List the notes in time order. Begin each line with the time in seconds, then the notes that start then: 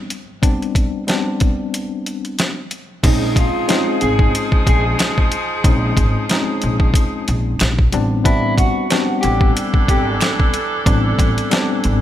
Already playing: G3 B3 C4 D4
0.10 closed hi-hat
0.42 G3 B3 C4 D4, kick, closed hi-hat
0.62 closed hi-hat
0.75 kick, closed hi-hat
1.07 G3 B3 C4 D4, snare, closed hi-hat
1.40 kick, closed hi-hat
1.74 closed hi-hat
2.06 closed hi-hat
2.25 closed hi-hat
2.39 snare, closed hi-hat
2.71 closed hi-hat
3.03 A#1 F3 G#3 C4 C#4 D#4 G#4, kick, closed hi-hat, crash
3.36 F4, kick, closed hi-hat
3.68 G#3 C4 C#4 D#4, finger snap, snare, closed hi-hat
4.01 G#1 G#4, closed hi-hat
4.19 kick
4.35 closed hi-hat
4.52 kick
4.67 A#1 G#4, kick, closed hi-hat
4.99 finger snap, snare, closed hi-hat
5.18 kick
5.32 closed hi-hat
5.64 A#1 G#3 C4 C#4 D#4, kick, closed hi-hat
5.97 G#1, kick, closed hi-hat
6.29 G#3 C4 C#4 D#4, finger snap, snare, closed hi-hat
6.62 A#1, closed hi-hat
6.80 kick
6.94 kick, closed hi-hat
7.28 A#1, closed hi-hat
7.59 A#1, finger snap, snare, closed hi-hat
7.79 kick
7.92 A1 G3 B3 C4 D4, closed hi-hat
8.24 G3 B3 C4 D4 E4, kick, closed hi-hat
8.58 F#4, kick, closed hi-hat
8.90 G3 B3 C4 D4, finger snap, snare, closed hi-hat
9.21 A1 E3 D4 G4 A4, closed hi-hat
9.41 kick
9.57 closed hi-hat
9.74 kick
9.88 G#1 G4, kick, closed hi-hat
10.21 finger snap, snare, closed hi-hat
10.40 kick
10.54 closed hi-hat
10.85 A1 G3 B3 C4 D4, kick, closed hi-hat
11.19 A1, kick, closed hi-hat
11.38 closed hi-hat
11.50 G3 B3 C4 D4, finger snap, snare, closed hi-hat
11.84 G#1, closed hi-hat